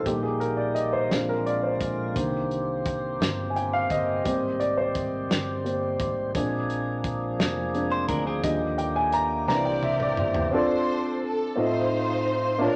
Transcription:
0.05 1.07 A#1 medium
0.05 1.10 D#3 medium
0.05 1.07 G3 soft
0.05 1.10 G3 medium
0.05 4.21 A#3 medium
0.05 1.07 A#3 soft
0.05 1.07 D#4 medium
0.05 1.10 G4 medium
0.05 0.24 G4 medium
0.05 kick medium
0.05 closed hi-hat medium
0.23 0.41 G#4 medium
0.40 0.59 A#4 medium
0.40 closed hi-hat soft
0.57 0.76 D5 medium
0.75 0.93 D#5 medium
0.75 closed hi-hat medium
0.93 1.26 C5 medium
1.09 1.77 A#1 medium
1.09 2.16 D3 medium
1.09 1.57 G#3 soft
1.09 2.15 G#3 soft
1.09 1.57 C4 soft
1.09 1.57 D4 medium
1.09 2.16 F4 medium
1.09 snare medium
1.09 closed hi-hat medium
1.29 1.45 A#4 medium
1.46 1.64 D5 medium
1.46 closed hi-hat soft
1.63 1.71 C5 medium
1.81 2.16 A#1 medium
1.81 kick medium
1.81 closed hi-hat medium
2.14 3.17 C2 medium
2.14 6.31 C3 medium
2.14 4.21 D3 soft
2.14 4.21 D#3 soft
2.14 4.21 A#3 soft
2.14 4.24 C4 medium
2.14 6.31 G4 medium
2.14 kick loud
2.14 closed hi-hat medium
2.51 closed hi-hat soft
2.86 kick medium
2.86 closed hi-hat medium
3.20 3.86 G1 medium
3.20 snare medium
3.20 closed hi-hat medium
3.50 3.55 G#5 medium
3.56 3.74 G5 medium
3.56 closed hi-hat soft
3.73 3.91 F5 medium
3.90 4.23 G1 medium
3.90 4.63 D#5 medium
3.90 kick medium
3.90 closed hi-hat medium
4.24 5.26 G#1 medium
4.24 5.63 G3 soft
4.24 6.33 G3 medium
4.24 5.63 A#3 soft
4.24 5.63 C4 soft
4.24 6.33 C4 medium
4.24 kick loud
4.24 closed hi-hat medium
4.60 4.76 D5 medium
4.60 closed hi-hat soft
4.77 5.78 C5 medium
4.95 kick medium
4.95 closed hi-hat medium
5.30 5.96 G1 medium
5.30 snare medium
5.30 closed hi-hat medium
5.64 5.96 G3 soft
5.64 5.96 A#3 soft
5.64 5.96 C4 soft
5.64 closed hi-hat medium
6.00 6.32 G#1 medium
6.00 kick loud
6.00 closed hi-hat medium
6.35 7.36 A#1 medium
6.35 8.42 F3 medium
6.35 7.73 G#3 medium
6.35 10.49 A#3 medium
6.35 7.73 C4 soft
6.35 8.42 D4 medium
6.35 7.74 D4 medium
6.35 8.42 G#4 medium
6.35 kick loud
6.35 closed hi-hat medium
6.70 closed hi-hat soft
7.04 kick medium
7.04 closed hi-hat medium
7.39 8.05 F1 medium
7.39 snare medium
7.39 closed hi-hat medium
7.74 8.06 G#3 soft
7.74 8.06 C4 soft
7.74 8.06 D4 soft
7.74 closed hi-hat soft
7.92 8.08 C5 medium
8.08 8.41 D2 medium
8.08 8.26 D4 medium
8.08 8.25 A#4 medium
8.08 kick loud
8.08 closed hi-hat medium
8.27 8.60 C4 medium
8.27 8.60 G#4 medium
8.43 9.44 D#2 medium
8.43 9.47 D3 medium
8.43 9.44 D3 medium
8.43 9.44 F3 soft
8.43 9.44 G3 soft
8.43 9.46 G4 medium
8.43 8.80 D#5 medium
8.43 kick loud
8.43 closed hi-hat medium
8.78 8.94 G5 medium
8.78 closed hi-hat soft
8.96 9.12 G#5 medium
9.12 9.47 A#5 loud
9.12 closed hi-hat medium
9.47 10.14 C2 loud
9.47 9.94 E3 medium
9.47 10.51 E3 medium
9.47 9.94 A#3 soft
9.47 10.51 C4 medium
9.47 9.95 D4 medium
9.47 10.51 G4 medium
9.47 10.49 G4 medium
9.47 10.49 A#4 medium
9.47 10.14 D5 loud
9.47 9.64 A#5 medium
9.47 snare soft
9.65 9.83 G5 medium
9.83 10.01 E5 medium
9.83 high tom medium
10.00 10.50 D5 medium
10.00 mid tom medium
10.17 10.49 G1 medium
10.17 mid tom loud
10.34 floor tom medium
10.51 11.37 C4 medium
10.51 11.37 D4 medium
10.51 11.38 F4 medium
10.51 11.38 A4 medium
10.51 11.24 A4 medium
10.51 11.19 C5 loud
10.51 11.39 D5 medium
11.25 11.56 A4 medium
11.56 12.57 A2 medium
11.56 12.41 C4 medium
11.56 12.41 D#4 medium
11.56 12.41 F4 medium
11.56 12.42 A4 medium
11.56 12.43 D#5 medium
11.60 12.58 D#4 medium
11.60 12.59 F4 medium
11.60 12.63 C5 loud
12.58 12.76 A#2 medium
12.58 12.76 A#3 medium
12.58 12.76 D4 medium
12.58 12.76 F4 medium
12.58 12.68 C#5 medium
12.58 12.76 A5 medium
12.64 12.76 D4 medium
12.64 12.76 F4 medium
12.64 12.76 A#4 loud
12.68 12.76 D5 medium

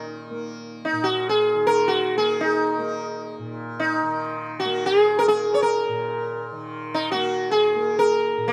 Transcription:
0.00 0.92 A#2 medium
0.00 1.55 D#3 soft
0.00 0.31 A#3 medium
0.31 2.17 A#3 soft
0.85 1.05 D#4 medium
0.93 3.39 A#2 medium
1.04 1.29 F#4 medium
1.29 1.68 G#4 medium
1.55 4.02 D#3 medium
1.67 1.89 A#4 medium
1.88 2.17 F#4 medium
2.17 2.78 A#3 medium
2.17 2.42 G#4 medium
2.41 3.34 D#4 medium
2.78 4.65 A#3 medium
3.39 5.88 A#2 medium
3.80 4.56 D#4 medium
4.02 6.52 D#3 medium
4.60 4.86 F#4 medium
4.65 5.27 A#3 medium
4.86 5.20 G#4 medium
5.19 5.28 A#4 medium
5.27 7.14 A#3 medium
5.27 5.54 G#4 medium
5.54 5.62 C#5 medium
5.62 6.45 A#4 medium
5.89 8.37 A#2 medium
6.52 8.53 D#3 medium
6.94 7.11 D#4 medium
7.12 7.76 A#3 medium
7.12 7.51 F#4 medium
7.51 7.94 G#4 loud
7.76 8.53 A#3 medium
7.99 8.49 A#4 medium
8.38 8.53 A#2 medium
8.48 8.53 A#3 medium

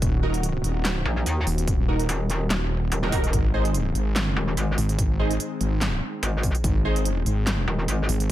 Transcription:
0.00 0.63 D#1 loud
0.00 3.29 D#3 medium
0.00 8.32 C4 medium
0.00 3.29 F#4 medium
0.00 kick loud
0.00 closed hi-hat medium
0.23 0.34 D#4 medium
0.23 0.34 F#4 medium
0.23 0.34 A#4 loud
0.34 closed hi-hat medium
0.43 closed hi-hat medium
0.64 1.04 D#1 loud
0.64 closed hi-hat medium
0.85 snare loud
0.85 clap medium
0.85 closed hi-hat medium
1.05 1.25 A#1 loud
1.26 1.45 D#2 loud
1.26 closed hi-hat medium
1.47 2.07 D#1 loud
1.47 open hi-hat medium
1.58 closed hi-hat medium
1.68 kick loud
1.68 closed hi-hat medium
1.88 1.99 D#4 medium
1.88 1.99 F#4 medium
1.88 1.99 A#4 loud
2.00 closed hi-hat medium
2.09 2.49 D#1 loud
2.09 closed hi-hat medium
2.30 closed hi-hat soft
2.50 2.90 D#1 loud
2.50 snare loud
2.50 clap medium
2.50 closed hi-hat medium
2.92 3.11 D#1 loud
2.92 closed hi-hat medium
3.03 3.11 D#4 medium
3.03 3.11 F#4 medium
3.03 3.11 A#4 loud
3.03 snare soft
3.12 3.32 D#1 loud
3.12 3.23 D#4 loud
3.12 3.23 F#4 medium
3.12 3.23 A#4 loud
3.12 kick loud
3.12 open hi-hat medium
3.24 closed hi-hat medium
3.33 3.94 G#1 loud
3.33 8.32 D#3 medium
3.33 8.32 G#3 medium
3.33 kick loud
3.33 closed hi-hat medium
3.54 3.65 D#4 medium
3.54 3.65 G#4 medium
3.54 3.65 C5 loud
3.65 closed hi-hat soft
3.74 closed hi-hat medium
3.95 4.35 G#1 loud
3.95 closed hi-hat soft
4.16 snare loud
4.16 clap medium
4.16 closed hi-hat medium
4.37 4.56 D#1 loud
4.57 4.76 G#1 loud
4.57 closed hi-hat medium
4.78 5.39 G#1 loud
4.78 open hi-hat loud
4.89 closed hi-hat medium
4.99 kick loud
4.99 closed hi-hat medium
5.19 5.30 D#4 medium
5.19 5.30 G#4 medium
5.19 5.30 C5 loud
5.31 closed hi-hat medium
5.40 closed hi-hat medium
5.61 6.01 G#1 loud
5.61 closed hi-hat medium
5.81 snare loud
5.81 clap medium
5.81 closed hi-hat medium
6.23 6.53 G#1 loud
6.23 closed hi-hat medium
6.43 kick loud
6.43 open hi-hat loud
6.55 closed hi-hat medium
6.64 7.25 G#1 loud
6.64 kick loud
6.64 closed hi-hat medium
6.85 6.96 D#4 medium
6.85 6.96 G#4 medium
6.85 6.96 C5 loud
6.96 closed hi-hat medium
7.05 closed hi-hat medium
7.26 7.66 G#1 loud
7.26 closed hi-hat medium
7.47 snare loud
7.47 clap medium
7.47 closed hi-hat medium
7.68 7.87 D#1 loud
7.88 8.07 G#1 loud
7.88 closed hi-hat medium
8.09 8.32 G#1 loud
8.09 open hi-hat loud
8.20 closed hi-hat medium

